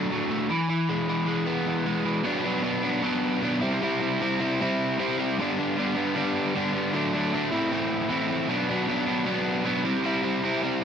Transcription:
overdriven electric guitar
Already playing: B2 A3 D4
0.11 F#3
0.31 A3
0.50 E3
0.69 E3
0.89 G#3
1.09 E3
1.27 G#3
1.46 B3
1.66 E3
1.86 G#3
2.04 E3
2.23 B2 F#3 B3 D4
2.44 F#3 B3 D4
2.63 B2 F#3 B3 D4
2.82 F#3 B3 D4
3.02 B2 F#3 B3 D4
3.42 B2 F#3 B3 D4
3.61 C3 G3 C4 E4
3.81 C3 G3 C4 E4
4.00 G3 C4 E4
4.20 C3 G3 C4 E4
4.40 G3 C4 E4
4.60 C3 G3 C4 E4
4.98 C3 G3 C4 E4
5.18 G3 C4 E4
5.38 G2 D3 G3 B3 D4
5.58 G3 B3 D4
5.76 D3 G3 B3 D4
5.95 G3 B3 D4
6.15 G2 D3 G3 B3 D4
6.55 D3 G3 B3 D4
6.73 G3 B3 D4
6.93 D3 F#3 A3 D4
7.13 F#3 A3 D4
7.32 D3 F#3 A3 D4
7.52 A2 E3 A3 C4 E4
7.71 A2 E3 A3 C4 E4
8.09 E3 A3 C4 E4
8.28 A3 C4 E4
8.48 B2 F#3 B3 D4
8.69 F#3 B3 D4
8.88 B2 F#3 B3 D4
9.06 F#3 B3 D4
9.25 B2 F#3 B3 D4
9.64 B2 F#3 B3 D4
9.85 C3 G3 C4 E4
10.04 C3 G3 C4 E4
10.23 G3 C4 E4
10.43 C3 G3 C4 E4
10.63 G3 C4 E4

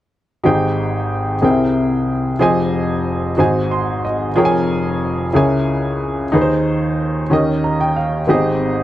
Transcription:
upright piano
0.44 G#1 G#2 D#4 G4 G#4 C5 G5
1.41 C2 C3 D#4 G#4 A#4 C5 G5
1.48 E4
2.39 F1 F2 F4 G#4 C5 D#5 G#5
3.37 G#1 G#2 F#4 G#4 C5 D#5 G#5
3.71 C6
4.05 D#5
4.36 F1 F2 F4 G#4 A#4 C#5 G5
4.45 G#5
5.33 C#2 C#3 E4 G#4 A#4 C#5 G#5
6.32 D#2 D#3 D#4 G#4 B4
6.41 C5
7.30 D#2 D#3 C#4 D#4 G4 A#4 D#5
7.64 A#5
7.81 G5
7.96 F5
8.27 G#1 G#2 B3 D#4 G4 G#4 D#5
8.34 C4

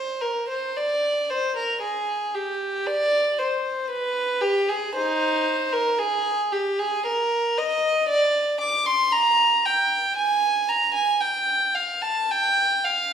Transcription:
violin
Already playing: C5
0.21 A#4
0.48 C5
0.77 D5
1.30 C5
1.56 A#4
1.82 G#4
2.35 G4
2.87 D5
3.39 C5
3.90 B4
4.41 G4
4.69 G#4
4.95 D#4 C5
5.72 A#4
5.98 G#4
6.52 G4
6.79 G#4
7.06 A#4
7.57 D#5
8.08 D5
8.61 D6
8.86 C6
9.12 A#5
9.65 G5
10.16 G#5
10.68 A#5
10.94 G#5
11.20 G5
11.75 F5
12.02 A5
12.31 G5
12.84 F5

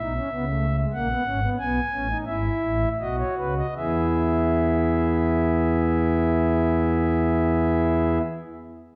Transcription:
pipe organ
Already playing: E5
0.00 B1 B2 D#4
0.16 C#4
0.31 C#2 C#3 B3
0.47 A3
0.78 G#3
0.93 A#1 A#2 A#3 F#5
1.09 B3
1.25 G#1 G#2 C#4
1.43 B3
1.59 B1 B2 B3 G#5
1.92 A1 A2 C#4
2.09 D#4
2.26 G#1 G#2 E4 E5
2.62 A1 A2
3.00 B1 B2 F#4 D#5
3.18 C#5
3.37 C#2 C#3 B4
3.57 D#5
3.76 E2 E3 B3 E4 G#4 E5

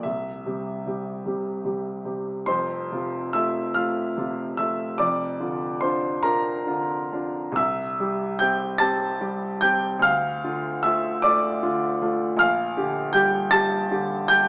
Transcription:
grand piano
0.03 C2 E5
0.46 C3 G3 G4
0.86 C3 G3 G4
1.26 C3 G3 G4
1.65 C3 G3 G4
2.05 C3 G3 G4
2.46 F1 F2 C5 C6
2.92 C3 F4
3.33 A3 F4 E5 E6
3.74 A3 F4 F5 F6
4.18 C3 F4
4.57 A3 F4 E5 E6
4.98 F1 F2 D5 D6
5.40 D3 F4
5.81 D4 F4 C5 C6
6.23 D4 F4 A#4 A#5
6.67 D3 F4
7.12 D4 F4
7.52 C2
7.56 E5 E6
8.00 G3 G4
8.39 C4 G4 G5 G6
8.78 C4 G4 A5 A6
9.21 G3 G4
9.61 C4 G4 G5 G6
9.99 D2 F6
10.03 F5
10.44 D3 F4
10.83 A3 F4 E5 E6
11.22 A3 F4 D5 D6
11.63 D3 F4
12.02 A3 F4
12.36 A#1 F5 F6
12.77 D3 G4
13.13 G3 G4 G5 G6
13.51 G3 G4 A5 A6
13.91 D3 G4
14.28 G3 G4 G5 G6

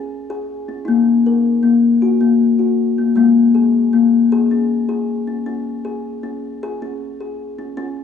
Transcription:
kalimba
Already playing: C#4
0.30 G#4
0.68 C#4
0.85 A#3 D#4
1.26 A#4
1.63 A#3
2.02 F#4
2.21 A#3
2.59 F#4
2.98 A#3
3.15 G#3 A#3
3.55 G#4
3.93 A#3
4.32 G#4
4.51 C#4
4.89 G#4
5.27 C#4
5.46 C#4
5.85 G#4
6.23 C#4
6.63 G#4
6.82 C#4
7.21 G#4
7.59 C#4
7.77 C#4

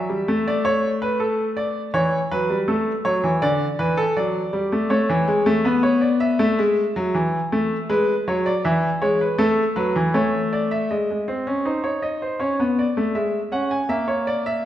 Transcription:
grand piano
Already playing: E5
0.09 G3
0.28 A3
0.48 D5
0.65 C#5
1.02 B4
1.20 A4
1.57 D5
1.94 E3 C#5
2.31 F#3 B4
2.50 G3
2.68 A3 A4
3.05 F#3 C#5
3.24 E3
3.42 D3 D5
3.79 E3 B4
3.97 A4
4.17 F#3 D5
4.53 G3
4.72 A3
4.90 A3 C#5
5.09 E3
5.28 G#3
5.46 A3
5.65 B3 B4
5.83 C#5
6.01 D5
6.20 E5
6.39 A3
6.59 G#3
6.96 F#3
7.14 E3
7.52 A3
7.89 G#3 B4
8.28 F#3 C#5
8.46 D5
8.64 E3 E5
9.02 G#3 C#5
9.21 B4
9.38 A3 A4
9.76 F#3 B4
9.96 E3
10.14 A3 C#5
10.53 D5
10.71 E5
10.91 G#3 D#5
11.11 G#3
11.28 C4
11.47 C#4
11.65 D#4 C5
11.84 C#5
12.02 D#5
12.22 C5
12.39 C#4 C#5
12.60 B3
12.79 D5
12.97 A3
13.15 G#3 E5
13.52 C#4 F#5
13.71 G#5
13.89 A#3 E5
14.08 C#5
14.27 D5
14.46 E5

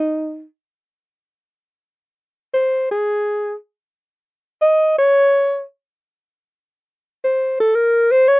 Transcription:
alto saxophone
Already playing: D#4
2.54 C5
2.91 G#4
4.62 D#5
4.98 C#5
7.24 C5
7.60 A4
7.75 A#4
8.11 C5
8.28 C#5

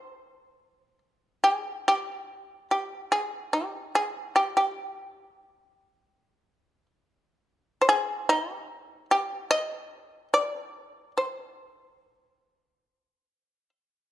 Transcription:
shamisen
Already playing: C5
1.44 G#4
1.88 G4
2.71 G4
3.12 G#4
3.53 G4
3.95 G#4
4.36 G4
4.57 G4
5.41 G#4
5.58 G4
5.86 G#4
6.04 G4
7.81 C5
7.89 G#4
8.29 D#4
8.54 G4
9.11 G4
9.51 D#5
10.34 D5
11.18 C5

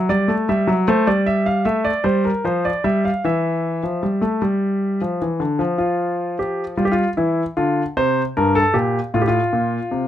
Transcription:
grand piano
0.09 G3 D5
0.28 A3
0.49 G3 E5
0.67 F#3
0.88 A3 C5
1.07 G3 D5
1.26 E5
1.46 F5
1.65 A3 E5
1.85 D5
2.04 G3 C5
2.25 A#4
2.44 F3 C5
2.65 D5
2.84 G3 E5
3.05 F5
3.25 E3 E5
3.83 F3
4.03 G3
4.21 A3
4.42 G3
5.01 F3
5.22 E3
5.40 D3
5.59 F3
5.78 F4
6.39 G4
6.77 G3 F4
6.85 G4
6.92 F4
7.17 E3 E4
7.57 D3 F4
7.97 C3 C5
8.37 G2 A#4
8.55 A4
8.74 A#2 G4
9.14 A2 F4
9.22 G4
9.28 F4
9.53 A#2
9.91 C3

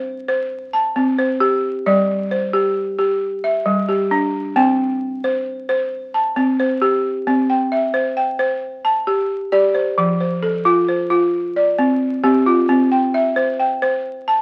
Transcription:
balafon
Already playing: C5 F5
0.28 C5
0.73 A5
0.96 C4
1.18 C5
1.40 G4
1.86 G3 D5
2.31 C5
2.53 G4
2.99 G4
3.44 E5
3.66 G3
3.89 G4
4.11 D4
4.56 C4 G5
5.24 C5
5.69 C5
6.14 A5
6.36 C4
6.60 C5
6.82 G4
7.27 C4
7.50 G5
7.72 E5
7.94 C5
8.17 G5
8.39 C5
8.85 A5
9.07 G4
9.52 G4 D5
9.74 C5
9.98 F3
10.20 C5
10.43 A4
10.65 F4
10.88 C5
11.10 F4
11.56 D5
11.79 C4
12.24 C4 G4
12.46 F4
12.69 C4
12.92 G5
13.14 E5
13.36 C5
13.59 G5
13.82 C5
14.28 A5

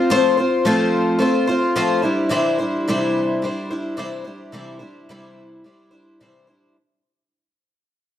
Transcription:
twelve-string acoustic guitar
Already playing: C4 F4
0.10 F3 A3 C4 F4 C5
0.37 C4 F4 C5
0.65 F3 A3 C4 F4 C5
1.19 A3 C4 F4 C5
1.47 C4 F4 C5
1.76 F3 A3 C4 F4 C5
2.02 G3 D4 E4 C5
2.29 C3 E3 G3 D4 E4 C5
2.58 G3 D4 E4 C5
2.88 C3 E3 G3 D4 E4 C5
3.42 G3 D4 E4 C5
3.70 G3 D4 E4 C5
3.97 C3 E3 G3 D4 E4 C5
4.24 G3 D4 E4 C5
4.52 C3 E3 G3 D4 E4 C5
4.79 G3 D4 E4 C5
5.09 C3 E3 G3 D4 E4 C5
5.64 G3 D4 E4 C5
5.91 G3 D4 E4 C5
6.20 C3 E3 G3 D4 E4 C5
6.47 G3 D4 E4 C5

